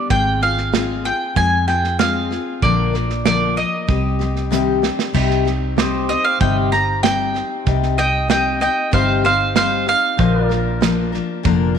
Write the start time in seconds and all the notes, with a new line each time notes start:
Already playing: B3 D4
0.10 G#1 G#3 C4 F4 G#4 G5, kick, snare
0.41 C4 F4 G#4 F5, snare
0.58 snare
0.73 G#3 C4 F4 G#4, snare, hi-hat pedal
1.04 C4 F4 G#4 G5, snare
1.35 F2 G#3 C4 F4 G#4 G#5, kick, snare
1.67 C4 F4 G#4 G5, snare
1.84 snare
1.99 G#3 C4 F4 G#4 F5, snare, hi-hat pedal
2.31 C4 F4 G#4, snare
2.62 A#1 A#2 D3 F3 A#3 D4 A#4 D5, kick, snare
2.93 F3 A#3 D4 A#4, snare
3.10 snare
3.25 A#2 D3 F3 A#3 D4 A#4 D5, snare, hi-hat pedal
3.56 F3 A#3 A#4 D#5, snare
3.87 C2 G3 C4 G4, kick, snare
4.19 G3 C4 G4, snare
4.36 snare
4.51 C3 D#3 G3 C4 G4, snare, hi-hat pedal
4.82 G3 C4 D4 G4, snare
4.99 snare
5.13 C2 C3 G3 C4 D#4 G4, kick, snare, crash
5.31 snare
5.45 C4 D#4 G4, snare
5.77 G3 C4 D#4 G4 C5 D#5, snare, hi-hat pedal
6.09 C4 D#4 G4 D#5, snare
6.25 F5
6.40 G1 C3 G3 C4 D#4 G4 G5, kick, snare
6.72 C4 D#4 G4 A#5, snare
7.03 G3 C4 D#4 G4 G5, snare, hi-hat pedal
7.34 C4 D#4 G4, snare
7.66 C2 C3 G3 C4 D#4 G4, kick, snare
7.83 snare
7.97 C4 D#4 G4 D#5 G5, snare
8.28 G3 C4 D#4 G4 D#5 G5, snare, hi-hat pedal
8.60 C4 D#4 G4 D#5 G5, snare
8.91 G1 C3 G3 C4 D#4 G4 C5 F5, kick, snare
9.24 C4 D#4 G4 C5 F5, snare
9.55 G3 C4 D#4 G4 C5 F5, snare, hi-hat pedal
9.86 C4 D#4 G4 F5, snare
10.17 A#1 A#2 D3 F3 A#3 D4 G4 A#4 C5 D#5, kick, snare
10.41 F4 A#4 D5
10.49 F3 A#3 D4 A#4, snare
10.81 F3 A#3 D4 A#4, snare, hi-hat pedal
11.12 F3 A#3 D4 A#4, snare
11.43 F1 A#2 D3 F3 A#3 D4 A#4, kick, snare
11.75 A#4